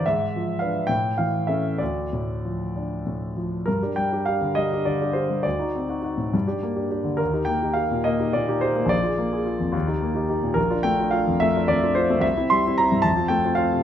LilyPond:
\new Staff \with { instrumentName = "Grand piano" } { \time 6/8 \key d \minor \tempo 4. = 70 << { e''4 eis''8 g''8 f''8 e''8 | d''2~ d''8 r8 | \key g \minor bes'8 g''8 f''8 ees''8 d''8 c''8 | d''2. |
bes'8 g''8 f''8 ees''8 d''8 c''8 | d''2. | \key bes \lydian bes'8 g''8 f''8 e''8 d''8 c''8 | e''8 c'''8 bes''8 a''8 g''8 f''8 | } \\ { gis,8 eis8 <d' b'>8 a,8 e8 <cis' a'>8 | d,8 a,8 f8 d'8 a,8 f8 | g,16 <d' g'>16 g16 <d' g'>16 <d' g'>16 d16 g16 <d' g'>16 d16 <d' g'>16 <d' g'>16 g16 | d,16 <ees' fis'>16 c'16 <ees' fis'>16 <ees' fis'>16 a,16 g,16 <d' g'>16 bes16 <d' g'>16 <d' g'>16 d16 |
ees,16 <ees' g'>16 bes16 <ees' g'>16 <ees' g'>16 bes,16 bes16 <ees' g'>16 bes,16 <ees' g'>16 <ees' g'>16 bes16 | bes,,16 <f' aes'>16 bes16 <f' aes'>16 <f' aes'>16 f,16 ees,16 <ees' g'>16 bes16 <ees' g'>16 <ees' g'>16 bes,16 | bes,,16 <d' f'>16 a16 <d' f'>16 <d' f'>16 f,16 a16 <d' f'>16 f,16 <d' f'>16 <d' f'>16 a16 | c,16 <c' e'>16 g16 <c' e'>16 <c' e'>16 g,16 f,16 <c' f'>16 a16 <c' f'>16 <c' f'>16 c16 | } >> }